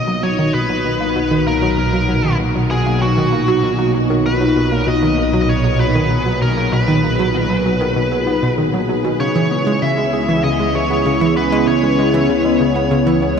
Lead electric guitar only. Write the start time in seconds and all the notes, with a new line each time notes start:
Already playing: D#5
0.23 C#5
0.54 B4
1.47 A#4
1.78 A#4
2.71 G#4
3.02 F#4
4.26 B4
4.71 A#4
4.88 D#5
5.42 D#5
5.49 C#5
5.80 B4
6.42 A#4
6.73 B4
9.20 C#5
9.82 E5
10.44 D#5
10.75 C#5
11.37 B4
11.68 C#5